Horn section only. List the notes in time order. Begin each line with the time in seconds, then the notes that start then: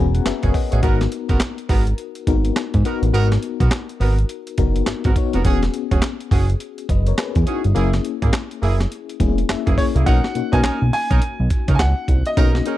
0.43 C#4 F#4 G#4
0.72 C#4 F#4 G#4
0.83 B3 F#4 A#4
1.29 B3 F#4 A#4
1.69 B3 F#4 A#4
2.85 B3 F#4 A#4
3.14 B3 F#4 A#4
3.60 B3 F#4 A#4
4.01 B3 F#4 A#4
5.05 B3 F#4 A#4
5.34 B3 F#4 A#4
5.45 C#4 F#4 G#4
5.91 C#4 F#4 G#4
6.31 C#4 F#4 G#4
7.47 C#4 F#4 G#4
7.75 A#3 E4 G#4
8.22 A#3 E4 G#4
8.62 A#3 E4 G#4
9.66 A#3 E4 G#4
9.95 A#3 E4 G#4
10.06 C#4 D#4 A#4
10.53 C#4 D#4 A#4
10.64 C#4 D#4 A#4
11.10 C#4 D#4 A#4
11.68 C#4 D#4 A#4
12.37 C#4 D#4 A#4
12.66 C#4 D#4 A#4